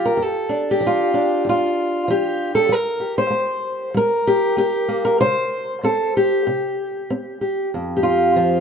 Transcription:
0, 0, Header, 1, 2, 480
1, 0, Start_track
1, 0, Tempo, 625000
1, 151, Time_signature, 4, 2, 24, 8
1, 4471, Tempo, 634921
1, 6573, End_track
2, 0, Start_track
2, 0, Title_t, "Steel-string acoustic guitar"
2, 0, Program_c, 0, 25
2, 0, Note_on_c, 0, 53, 60
2, 0, Note_on_c, 0, 65, 50
2, 0, Note_on_c, 0, 67, 92
2, 42, Note_on_c, 0, 70, 92
2, 104, Note_off_c, 0, 53, 0
2, 124, Note_off_c, 0, 65, 0
2, 131, Note_on_c, 0, 41, 68
2, 164, Note_off_c, 0, 67, 0
2, 172, Note_off_c, 0, 70, 0
2, 172, Note_on_c, 0, 69, 95
2, 378, Note_on_c, 0, 62, 45
2, 545, Note_on_c, 0, 67, 85
2, 572, Note_off_c, 0, 41, 0
2, 618, Note_on_c, 0, 53, 63
2, 641, Note_off_c, 0, 69, 0
2, 665, Note_on_c, 0, 65, 86
2, 871, Note_off_c, 0, 62, 0
2, 874, Note_on_c, 0, 62, 48
2, 1055, Note_off_c, 0, 53, 0
2, 1112, Note_on_c, 0, 41, 68
2, 1126, Note_off_c, 0, 67, 0
2, 1127, Note_off_c, 0, 65, 0
2, 1146, Note_on_c, 0, 65, 91
2, 1541, Note_off_c, 0, 41, 0
2, 1597, Note_on_c, 0, 53, 58
2, 1616, Note_on_c, 0, 67, 98
2, 1955, Note_off_c, 0, 65, 0
2, 1958, Note_on_c, 0, 69, 100
2, 2021, Note_off_c, 0, 53, 0
2, 2038, Note_off_c, 0, 62, 0
2, 2066, Note_on_c, 0, 55, 76
2, 2079, Note_off_c, 0, 67, 0
2, 2090, Note_off_c, 0, 69, 0
2, 2090, Note_on_c, 0, 70, 104
2, 2302, Note_on_c, 0, 67, 44
2, 2436, Note_off_c, 0, 70, 0
2, 2441, Note_on_c, 0, 72, 105
2, 2496, Note_off_c, 0, 55, 0
2, 2537, Note_on_c, 0, 58, 62
2, 2973, Note_off_c, 0, 58, 0
2, 3029, Note_on_c, 0, 55, 69
2, 3033, Note_off_c, 0, 72, 0
2, 3049, Note_on_c, 0, 70, 103
2, 3264, Note_off_c, 0, 67, 0
2, 3282, Note_on_c, 0, 67, 93
2, 3459, Note_off_c, 0, 55, 0
2, 3508, Note_on_c, 0, 58, 62
2, 3509, Note_off_c, 0, 67, 0
2, 3518, Note_on_c, 0, 67, 97
2, 3741, Note_off_c, 0, 58, 0
2, 3750, Note_on_c, 0, 58, 53
2, 3758, Note_off_c, 0, 70, 0
2, 3877, Note_on_c, 0, 70, 101
2, 3960, Note_off_c, 0, 58, 0
2, 3992, Note_off_c, 0, 70, 0
2, 3994, Note_off_c, 0, 67, 0
2, 3998, Note_on_c, 0, 72, 114
2, 4003, Note_on_c, 0, 48, 67
2, 4429, Note_off_c, 0, 48, 0
2, 4480, Note_on_c, 0, 60, 59
2, 4488, Note_on_c, 0, 69, 97
2, 4717, Note_off_c, 0, 69, 0
2, 4733, Note_on_c, 0, 67, 82
2, 4904, Note_off_c, 0, 60, 0
2, 4952, Note_off_c, 0, 72, 0
2, 4960, Note_on_c, 0, 48, 65
2, 5386, Note_off_c, 0, 48, 0
2, 5440, Note_on_c, 0, 60, 62
2, 5664, Note_off_c, 0, 67, 0
2, 5673, Note_on_c, 0, 67, 47
2, 5867, Note_off_c, 0, 60, 0
2, 5882, Note_off_c, 0, 67, 0
2, 5922, Note_on_c, 0, 41, 65
2, 6092, Note_on_c, 0, 67, 64
2, 6141, Note_on_c, 0, 65, 78
2, 6390, Note_on_c, 0, 53, 58
2, 6573, Note_off_c, 0, 41, 0
2, 6573, Note_off_c, 0, 53, 0
2, 6573, Note_off_c, 0, 65, 0
2, 6573, Note_off_c, 0, 67, 0
2, 6573, End_track
0, 0, End_of_file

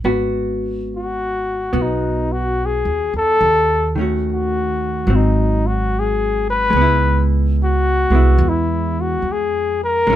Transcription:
0, 0, Header, 1, 4, 480
1, 0, Start_track
1, 0, Key_signature, 5, "minor"
1, 0, Tempo, 835655
1, 24, Time_signature, 4, 2, 24, 8
1, 5835, End_track
2, 0, Start_track
2, 0, Title_t, "Flugelhorn"
2, 0, Program_c, 0, 56
2, 554, Note_on_c, 0, 66, 71
2, 1045, Note_on_c, 0, 63, 57
2, 1054, Note_off_c, 0, 66, 0
2, 1333, Note_on_c, 0, 66, 76
2, 1341, Note_off_c, 0, 63, 0
2, 1526, Note_on_c, 0, 68, 69
2, 1535, Note_off_c, 0, 66, 0
2, 1818, Note_off_c, 0, 68, 0
2, 1821, Note_on_c, 0, 69, 93
2, 2264, Note_off_c, 0, 69, 0
2, 2484, Note_on_c, 0, 66, 71
2, 2962, Note_on_c, 0, 63, 57
2, 2971, Note_off_c, 0, 66, 0
2, 3255, Note_on_c, 0, 66, 76
2, 3264, Note_off_c, 0, 63, 0
2, 3445, Note_on_c, 0, 68, 75
2, 3453, Note_off_c, 0, 66, 0
2, 3731, Note_off_c, 0, 68, 0
2, 3735, Note_on_c, 0, 71, 104
2, 4175, Note_off_c, 0, 71, 0
2, 4389, Note_on_c, 0, 66, 86
2, 4875, Note_on_c, 0, 64, 70
2, 4883, Note_off_c, 0, 66, 0
2, 5174, Note_on_c, 0, 66, 78
2, 5182, Note_off_c, 0, 64, 0
2, 5353, Note_on_c, 0, 68, 86
2, 5362, Note_off_c, 0, 66, 0
2, 5647, Note_off_c, 0, 68, 0
2, 5651, Note_on_c, 0, 70, 91
2, 5835, Note_off_c, 0, 70, 0
2, 5835, End_track
3, 0, Start_track
3, 0, Title_t, "Hollow-body jazz guitar"
3, 0, Program_c, 1, 26
3, 28, Note_on_c, 1, 59, 51
3, 31, Note_on_c, 1, 66, 59
3, 986, Note_off_c, 1, 59, 0
3, 992, Note_on_c, 1, 59, 39
3, 993, Note_off_c, 1, 66, 0
3, 1000, Note_on_c, 1, 66, 40
3, 1956, Note_off_c, 1, 59, 0
3, 1960, Note_off_c, 1, 66, 0
3, 2272, Note_on_c, 1, 51, 45
3, 2285, Note_on_c, 1, 57, 47
3, 2292, Note_on_c, 1, 61, 46
3, 2303, Note_on_c, 1, 66, 47
3, 2913, Note_off_c, 1, 51, 0
3, 2913, Note_off_c, 1, 57, 0
3, 2915, Note_on_c, 1, 54, 51
3, 2923, Note_off_c, 1, 61, 0
3, 2929, Note_off_c, 1, 66, 0
3, 2929, Note_on_c, 1, 60, 50
3, 3848, Note_off_c, 1, 54, 0
3, 3850, Note_on_c, 1, 56, 52
3, 3877, Note_off_c, 1, 60, 0
3, 3887, Note_on_c, 1, 59, 60
3, 3913, Note_on_c, 1, 64, 62
3, 4655, Note_off_c, 1, 56, 0
3, 4661, Note_on_c, 1, 56, 44
3, 4662, Note_off_c, 1, 59, 0
3, 4669, Note_on_c, 1, 59, 46
3, 4673, Note_off_c, 1, 64, 0
3, 4680, Note_on_c, 1, 64, 46
3, 5778, Note_off_c, 1, 56, 0
3, 5785, Note_on_c, 1, 56, 61
3, 5790, Note_off_c, 1, 59, 0
3, 5795, Note_off_c, 1, 64, 0
3, 5801, Note_on_c, 1, 61, 63
3, 5816, Note_on_c, 1, 64, 67
3, 5835, Note_off_c, 1, 56, 0
3, 5835, Note_off_c, 1, 61, 0
3, 5835, Note_off_c, 1, 64, 0
3, 5835, End_track
4, 0, Start_track
4, 0, Title_t, "Upright bass"
4, 0, Program_c, 2, 32
4, 23, Note_on_c, 2, 32, 76
4, 970, Note_off_c, 2, 32, 0
4, 995, Note_on_c, 2, 35, 85
4, 1614, Note_off_c, 2, 35, 0
4, 1637, Note_on_c, 2, 39, 63
4, 1786, Note_off_c, 2, 39, 0
4, 1800, Note_on_c, 2, 40, 68
4, 1947, Note_off_c, 2, 40, 0
4, 1957, Note_on_c, 2, 39, 82
4, 2891, Note_off_c, 2, 39, 0
4, 2911, Note_on_c, 2, 32, 86
4, 3845, Note_off_c, 2, 32, 0
4, 3865, Note_on_c, 2, 37, 85
4, 4637, Note_off_c, 2, 37, 0
4, 4654, Note_on_c, 2, 36, 69
4, 4809, Note_off_c, 2, 36, 0
4, 4816, Note_on_c, 2, 40, 91
4, 5277, Note_off_c, 2, 40, 0
4, 5297, Note_on_c, 2, 41, 61
4, 5759, Note_off_c, 2, 41, 0
4, 5782, Note_on_c, 2, 34, 83
4, 5835, Note_off_c, 2, 34, 0
4, 5835, End_track
0, 0, End_of_file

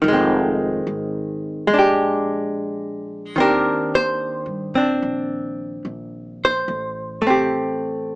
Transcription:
0, 0, Header, 1, 3, 480
1, 0, Start_track
1, 0, Tempo, 828729
1, 24, Time_signature, 4, 2, 24, 8
1, 4723, End_track
2, 0, Start_track
2, 0, Title_t, "Hollow-body jazz guitar"
2, 0, Program_c, 0, 26
2, 10, Note_on_c, 0, 51, 40
2, 48, Note_on_c, 0, 56, 40
2, 76, Note_on_c, 0, 60, 36
2, 963, Note_off_c, 0, 56, 0
2, 970, Note_on_c, 0, 56, 55
2, 972, Note_off_c, 0, 51, 0
2, 1003, Note_off_c, 0, 60, 0
2, 1006, Note_on_c, 0, 62, 46
2, 1035, Note_on_c, 0, 67, 51
2, 1945, Note_off_c, 0, 56, 0
2, 1945, Note_on_c, 0, 51, 36
2, 1957, Note_on_c, 0, 60, 41
2, 1963, Note_off_c, 0, 62, 0
2, 1968, Note_off_c, 0, 67, 0
2, 1971, Note_on_c, 0, 62, 41
2, 1971, Note_on_c, 0, 70, 63
2, 1977, Note_on_c, 0, 67, 40
2, 2266, Note_off_c, 0, 70, 0
2, 2289, Note_on_c, 0, 72, 69
2, 2747, Note_off_c, 0, 60, 0
2, 2754, Note_on_c, 0, 60, 37
2, 2758, Note_off_c, 0, 62, 0
2, 2764, Note_off_c, 0, 67, 0
2, 2765, Note_on_c, 0, 62, 37
2, 2773, Note_off_c, 0, 72, 0
2, 3735, Note_on_c, 0, 72, 68
2, 3870, Note_off_c, 0, 60, 0
2, 3871, Note_off_c, 0, 51, 0
2, 3876, Note_off_c, 0, 62, 0
2, 4180, Note_on_c, 0, 57, 38
2, 4209, Note_on_c, 0, 60, 41
2, 4229, Note_on_c, 0, 67, 43
2, 4723, Note_off_c, 0, 57, 0
2, 4723, Note_off_c, 0, 60, 0
2, 4723, Note_off_c, 0, 67, 0
2, 4723, Note_off_c, 0, 72, 0
2, 4723, End_track
3, 0, Start_track
3, 0, Title_t, "Upright bass"
3, 0, Program_c, 1, 32
3, 21, Note_on_c, 1, 29, 80
3, 476, Note_off_c, 1, 29, 0
3, 502, Note_on_c, 1, 32, 64
3, 956, Note_off_c, 1, 32, 0
3, 973, Note_on_c, 1, 34, 65
3, 1923, Note_off_c, 1, 34, 0
3, 1949, Note_on_c, 1, 39, 65
3, 2570, Note_off_c, 1, 39, 0
3, 2582, Note_on_c, 1, 43, 54
3, 2736, Note_off_c, 1, 43, 0
3, 2745, Note_on_c, 1, 46, 61
3, 2898, Note_off_c, 1, 46, 0
3, 2910, Note_on_c, 1, 34, 64
3, 3369, Note_off_c, 1, 34, 0
3, 3387, Note_on_c, 1, 34, 66
3, 3846, Note_off_c, 1, 34, 0
3, 3868, Note_on_c, 1, 33, 71
3, 4723, Note_off_c, 1, 33, 0
3, 4723, End_track
0, 0, End_of_file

